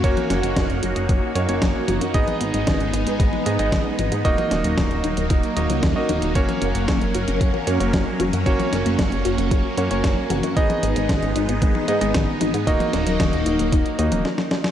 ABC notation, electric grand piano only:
X:1
M:4/4
L:1/16
Q:1/4=114
K:F#
V:1 name="Electric grand piano"
[A,CFc]8- [A,CFc]2 [A,CFc] [A,CFc]4- [A,CFc] | [B,DGd]8- [B,DGd]2 [B,DGd] [B,DGd]4- [B,DGd] | [A,DFd]8- [A,DFd]2 [A,DFd]3 [A,DFd]3 | [A,CFc]8- [A,CFc]2 [A,CFc] [A,CFc]4- [A,CFc] |
[A,CFc]8- [A,CFc]2 [A,CFc] [A,CFc]4- [A,CFc] | [B,DGd]8- [B,DGd]2 [B,DGd] [B,DGd]4- [B,DGd] | [A,DFd]8- [A,DFd]2 [A,DFd]2 z4 |]